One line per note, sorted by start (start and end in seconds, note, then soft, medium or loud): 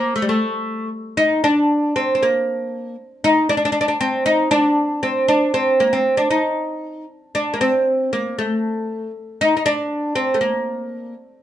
0.00 0.15 A#3 medium
0.16 0.22 A3 medium
0.22 0.30 G3 medium
0.29 0.88 A3 medium
1.17 1.43 D#4 medium
1.44 1.95 D4 medium
1.96 2.14 C4 medium
2.15 2.22 C4 soft
2.23 2.95 A#3 medium
3.24 3.49 D#4 medium
3.49 3.56 D4 medium
3.57 3.64 D4 medium
3.65 3.71 D4 medium
3.72 3.80 D4 medium
3.81 3.87 D4 medium
3.88 3.96 D4 medium
4.01 4.25 C4 medium
4.26 4.51 D#4 medium
4.51 5.02 D4 medium
5.03 5.28 C4 medium
5.28 5.54 D4 medium
5.54 5.81 C4 medium
5.80 5.94 A#3 medium
5.93 6.17 C4 medium
6.17 6.30 D4 medium
6.30 7.04 D#4 medium
7.35 7.54 D4 medium
7.54 7.60 A#3 medium
7.61 8.12 C4 medium
8.13 8.38 A#3 medium
8.38 9.10 A3 medium
9.41 9.55 D#4 medium
9.57 9.64 D#4 medium
9.66 10.15 D4 medium
10.15 10.35 C4 medium
10.34 10.40 A3 medium
10.41 11.14 A#3 medium